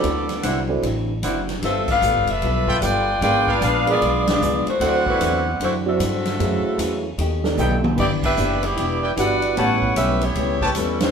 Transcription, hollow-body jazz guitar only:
X:1
M:4/4
L:1/8
Q:"Swing" 1/4=151
K:Dmix
V:1 name="Hollow-body jazz guitar"
[D,F,CE] z [D,F,CE] z [D,F,CE] z [D,F,CE] z | [G,B,=FA] z [G,B,FA] z [G,B,FA] z [G,B,FA] z | [^G,,^E,B,D] z [G,,E,B,D] z [G,,E,B,D] z [G,,E,B,D] z | [D,F,CE] z [D,F,CE] z [D,F,CE] z [D,F,CE] z |
[F,,E,A,^C] z [F,,E,A,C] z [B,,A,^DG] z [B,,A,DG] z | [E,B,DG] z [E,B,DG] z [E,B,DG] z [E,B,DG] z | [A,,G,B,^C] z [A,,G,B,C] z [A,,G,B,C] z [A,,G,B,C] z |]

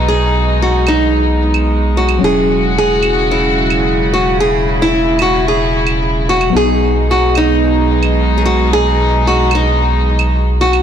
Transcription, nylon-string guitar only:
X:1
M:4/4
L:1/16
Q:1/4=111
K:B
V:1 name="Nylon-string guitar"
G4 F2 D8 F2 | G4 G4 E6 F2 | G3 E3 F2 G6 F2 | G4 F2 D6- D3/2 G/2 F2 |
G4 F2 D8 F2 |]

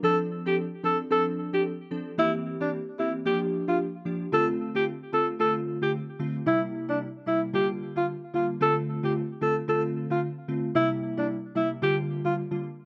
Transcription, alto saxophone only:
X:1
M:4/4
L:1/16
Q:"Swing 16ths" 1/4=112
K:Dm
V:1 name="Alto saxophone"
A z2 G z2 A z A z2 G z4 | E z2 D z2 E z G z2 F z4 | A z2 G z2 A z A z2 G z4 | E z2 D z2 E z G z2 F z2 F z |
A z2 G z2 A z A z2 F z4 | E z2 D z2 E z G z2 F z4 |]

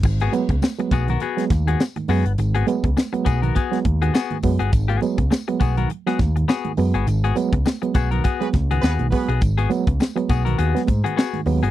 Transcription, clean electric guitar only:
X:1
M:4/4
L:1/16
Q:"Swing 16ths" 1/4=102
K:G#m
V:1 name="Clean electric guitar"
z [B,FG] z4 [B,FG] [B,FA] [B,FG] z2 [B,FG] z2 [B,FG] z | z [B,FG] z4 [B,FG] [B,FA] [B,FG] z2 [B,FG] [B,FG] z2 [B,FG] | z [B,FG] z4 [B,FG] [B,FA] z [B,FG] z2 [B,FG] z2 [B,FG] | z [B,FG] z4 [B,FG] [B,FA] [B,FG] z2 [B,FG] [B,FG] z2 [B,FG] |
z [B,FG] z4 [B,FG] [B,FA] [B,FG] z2 [B,FG] [B,FG] z2 [B,FG] |]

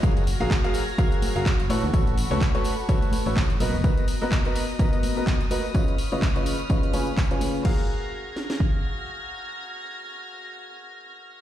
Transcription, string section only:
X:1
M:4/4
L:1/8
Q:"Swing 16ths" 1/4=126
K:F#
V:1 name="String section"
[Fe'g'a']6- [Fe'g'a'] [=Abc']- | [=Abc']6- [Abc'] [d^ad']- | [dad']8 | [cbe']8 |
[Fe'g'a']8- | [Fe'g'a']8 |]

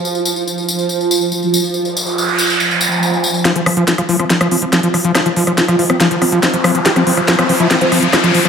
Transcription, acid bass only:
X:1
M:4/4
L:1/16
Q:1/4=141
K:Cphr
V:1 name="Acid bass" clef=bass
z16 | z16 | F, F, F, F, F, F, F, F, F, F, F, F, F, F, F, F, | F, F, F, F, F, F, F, F, F, F, F, F, F, F, F, F, |
F, F, F, F, F, F, F, F, F, F, F, F, F, F, F, F, |]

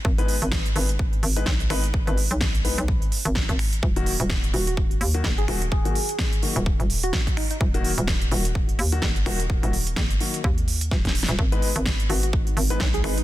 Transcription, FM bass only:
X:1
M:4/4
L:1/16
Q:"Swing 16ths" 1/4=127
K:G#m
V:1 name="FM bass" clef=bass
G,,,3 G,,,3 G,,,4 G,,,2 B,,,2 G,,,2- | G,,, G,,,2 B,,,4 B,,,2 z2 G,,,2 G,,,3 | D,,,3 D,,,3 D,,,4 D,,2 F,,,2 D,,,2- | D,,, z6 D,,,2 D,,,3 z4 |
D,,,3 D,,,3 D,,,4 D,,2 F,,,2 D,,,2- | D,,, D,,,3 F,,,2 z2 D,,4 D,,,3 D,,, | G,,,3 G,,,3 G,,,4 G,,,2 B,,,2 G,,,2 |]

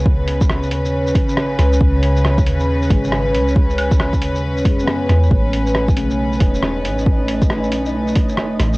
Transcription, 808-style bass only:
X:1
M:4/4
L:1/8
Q:"Swing 16ths" 1/4=137
K:C#m
V:1 name="808-style bass" clef=bass
C,,3 D,,2 G,,,2 C,, | C,,3 D,,2 G,,,2 C,,- | C,,3 D,,2 F,,2 E,, | A,,,3 B,,,2 E,,,2 A,,,- |
A,,,3 B,,,2 E,,,2 A,,, |]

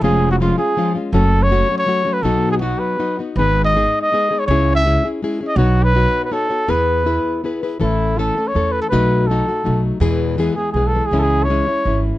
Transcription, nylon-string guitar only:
X:1
M:3/4
L:1/8
Q:1/4=162
K:E
V:1 name="Nylon-string guitar"
[^E,G,C^E]2 [E,G,CE] [G,CE] [E,G,CE] [G,CE] | [F,,C,F,A,CF]2 [F,A,CF] [F,A,CF] [F,A,CF] [F,A,CF] | [B,,F,B,DF]2 [F,B,DF]2 [F,B,DF] [B,DF] | [G,,D,G,B,DG]2 [G,B,DG]2 [G,B,DG] [G,B,DG] |
[C,G,CEG]2 [G,CEG] [CEG] [G,CEG] [CEG] | [B,DFc]2 [B,DFc]2 [B,DFc] [DFc] | [E,B,EGB]2 [B,EGB]2 [B,EGB] [EGB] | [K:A] [A,,E,A,CA]2 [E,A,CA] [A,CA] [E,A,CA]2 |
[B,,F,A,^DF]2 [F,A,DF] [A,DF] [F,A,DF]2 | [E,,B,,E,G,B,G]2 [E,G,B,G] [E,G,B,G] [E,G,B,G] [E,G,B,G] | [C,E,G,CE]2 [E,G,CE] [G,CE] [E,G,CE]2 |]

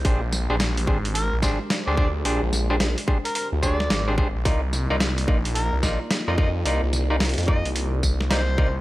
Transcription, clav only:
X:1
M:4/4
L:1/16
Q:"Swing 16ths" 1/4=109
K:Cm
V:1 name="Clav"
[DGAc] z2 [DGAc] z2 [DGAc] z3 [DGAc] z2 [DGAc] [DGAc] z | [DGAc] z2 [DGAc] z2 [DGAc] z3 [DGAc] z2 [DGAc] [DGAc] z | [EFBd] z2 [EFBd] z2 [EFBd] z3 [EFBd] z2 [EFBd] [EFBd] z | [EFBd] z2 [EFBd] z2 [EFBd] z4 z [EFBd] z [EFBd] z |]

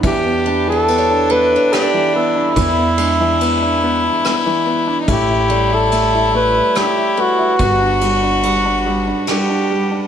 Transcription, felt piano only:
X:1
M:3/4
L:1/16
Q:1/4=72
K:Edor
V:1 name="Felt piano"
E, B, D E, B, D B, D B, E, B, D | E, B, D E, B, D B, D B, E, B, D | A, E A, E A, E A, E A, E A, E | G, D G, D G, D G, D G, D G, D |]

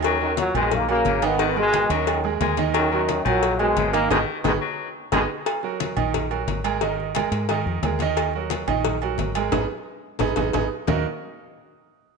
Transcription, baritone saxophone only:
X:1
M:4/4
L:1/8
Q:1/4=177
K:Ebm
V:1 name="Baritone saxophone" clef=bass
G,3 E,3 D,2 | E,3 G,3 A,2 | G,3 E,3 D,2 | E,3 G,3 A,2 |
z8 | z8 | z8 | z8 |
z8 |]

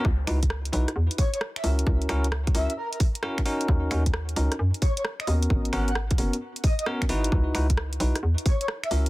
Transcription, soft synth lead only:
X:1
M:4/4
L:1/16
Q:"Swing 16ths" 1/4=132
K:C#dor
V:1 name="Soft synth lead"
z8 z2 c c z e z2 | z6 e z A A z6 | z8 z2 c c z d z2 | z2 f f z6 d d z4 |
z8 z2 c c z e z2 |]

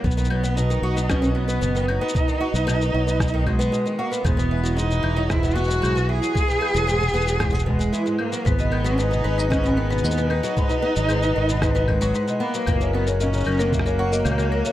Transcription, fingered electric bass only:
X:1
M:4/4
L:1/16
Q:1/4=114
K:B
V:1 name="Fingered electric bass" clef=bass
B,,,6 B,,,6 F,,,3 z | z3 B,,,3 B,,,6 z4 | E,,,6 E,,,6 B,,,3 z | z3 E,,,3 E,,,6 z4 |
G,,,6 G,,,6 D,,3 z | z3 G,,,3 G,,,6 z4 | F,,,6 F,,,6 C,,3 z |]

